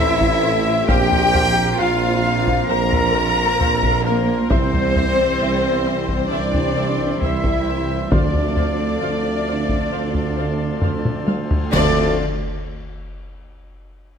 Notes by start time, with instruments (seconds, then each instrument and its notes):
Already playing: trombone section E3 A3, french horn section C4 A4, pipe organ C4 E4 A4 C5, cello section E4, flute E5, trumpet E5, violin section E5
0.00 tuba A1, double bass section A1
0.21 taiko
0.43 viola section C5 E5
0.87 tuba A#1, double bass section A#1, trombone section F3 A#3, pipe organ C4 F4 A#4 C5, french horn section C4 C5, cello section G4, viola section C5 F5, violin section G5, flute G5, trumpet G5, taiko
1.12 taiko low
1.33 viola section C5 F5, taiko low
1.79 double bass section A#1, tuba A#1, cello section F4, viola section C5 F5, flute F5, violin section F5, trumpet F5
2.24 viola section C5 F5
2.47 taiko
2.69 tuba A#1, double bass section A#1, cello section A#4, viola section C5 F5, violin section A#5, flute A#5, trumpet A#5
2.92 taiko low
3.14 viola section C5 F5
3.60 tuba A#1, double bass section A#1, viola section C5 F5, taiko low
3.83 taiko
4.05 cello section A#3, flute A#4, violin section A#4, trumpet A#4, viola section C5 F5
4.48 tuba C2, double bass section C2, trombone section E3 G3, pipe organ C4 E4 G4 C5, french horn section C4 C5, cello section C4, flute C5, viola section C5 E5, violin section C5, trumpet C5, taiko
4.73 taiko low
4.96 viola section C5 E5, taiko low
5.41 double bass section C2, tuba C2, viola section C5 E5
5.86 viola section C5 E5
6.09 taiko
6.31 tuba C2, double bass section C2, cello section D4, viola section C5 E5, violin section D5, flute D5, trumpet D5
6.54 taiko low
6.77 viola section C5 E5
7.21 tuba C2, double bass section C2, cello section E4, viola section C5 E5, violin section E5, trumpet E5, flute E5, taiko low
7.44 taiko
7.67 viola section C5 E5
8.11 double bass section D2, tuba D2, timpani D3, trombone section F3 A3, pipe organ A3 F4 A4 C5, french horn section C4 A4, cello section D4, viola section C5 F5, violin section D5, trumpet D5, flute D5, taiko
8.35 taiko low
8.56 viola section C5 F5, taiko low
9.01 double bass section D2, tuba D2, viola section C5 F5
9.47 viola section C5 F5
9.69 taiko
9.92 tuba D2, double bass section D2, viola section C5 F5
10.14 taiko low
10.37 viola section C5 F5
10.82 tuba D2, double bass section D2, viola section C5 F5, taiko low-mid
11.05 taiko mid
11.28 viola section C5 F5, taiko high
11.51 taiko low
11.71 tuba D2, double bass section D2, timpani D3, trombone section F3 A3, pipe organ A3 F4 A4 C5, cello section D4, french horn section A4, viola section C5 D5, flute D5, violin section D5, trumpet D5, concert bass drum, crash
11.75 french horn section C4